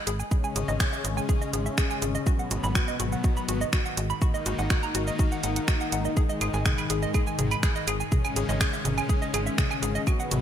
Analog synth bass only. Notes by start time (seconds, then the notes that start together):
0.07 G#1
0.56 G#1
0.68 G#1
1.04 G#1
1.53 G#1
2.02 G#1
2.51 G#1
2.64 G#1
3.00 G#1
3.49 G#1
3.97 G#1
4.46 G#1
4.59 G#1
4.95 G#1
5.44 G#1
5.92 G#1
6.41 G#1
6.54 G#1
6.90 G#1
7.39 G#1
7.87 G#1
8.36 G#1
8.49 G#1
8.85 G#1
9.34 G#1
9.83 G#1
10.31 G#1